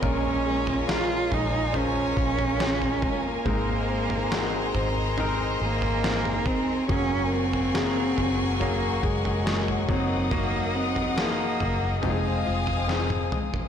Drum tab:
SD |----o-------o---|----o-------o---|----o-------o---|----o-------o---|
T1 |----------------|----------------|----------------|-------------o--|
T2 |----------------|----------------|----------------|--------------o-|
FT |o--o--o-o--o-oo-|o--o--o-o--o-oo-|o--o--o-o--o-oo-|o--o--o-o--o---o|
BD |o---------o---o-|o-------------o-|o---------o---o-|o---------------|